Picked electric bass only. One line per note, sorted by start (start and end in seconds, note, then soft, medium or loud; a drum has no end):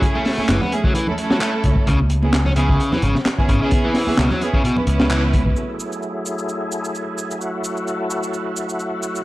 0.38 muted picked electric bass stroke soft
0.49 0.59 F#1 medium
1.64 1.75 C#2 medium
1.88 2.77 C#2 loud
3.03 3.13 G#1 loud
3.49 3.59 G#1 loud
4.08 muted picked electric bass stroke soft
4.18 4.29 C#2 medium
4.87 5.54 C#2 loud